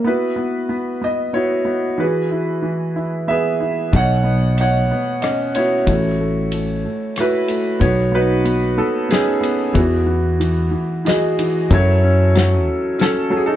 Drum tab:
RD |------|------|x-x-xx|x-x-xx|
HH |------|------|------|------|
SD |------|------|----r-|----r-|
BD |------|------|o-----|o-----|

RD |x-x-xx|x-x-xx|------|
HH |------|------|x-x-x-|
SD |----o-|----o-|--o-o-|
BD |o-----|o-----|o-----|